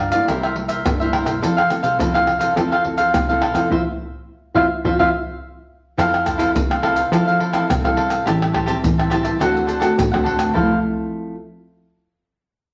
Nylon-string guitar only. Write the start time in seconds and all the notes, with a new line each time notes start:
Already playing: D3 D4 F4 A#4
0.13 G3 A#3 E4
0.30 C3
0.56 G3 A#3 E4
0.86 G2
1.01 G3 A#3 E4
1.42 F3 C4 E4 A4
1.70 C4 E4 A4
2.00 C3
2.15 C4 E4 A4
2.41 C4 E4 A4
2.58 F3 C4 E4 A4
2.85 C4 E4 A4
3.14 C3
3.29 C4 E4 A4
3.54 C4 E4 A4
3.70 C4 E4 F4
4.54 C4 E4 F4
4.84 C4 E4 F4
4.99 C4 E4 F4
5.97 F3 C4 E4 A4
6.38 C4 E4 A4
6.55 C3
6.82 C4 E4 A4
7.12 F3 C4 E4 A4
7.53 C4 E4 A4
7.69 C3
7.84 C4 E4 A4
8.27 A2 G3 C4 E4
8.68 G3 C4 E4
8.84 E3
9.12 G3 C4 E4
9.41 D3 A3 C4 F#4
9.81 A3 C4 F#4
9.99 A2
10.13 A3 C4 F#4
10.54 F3 A3 C4 E4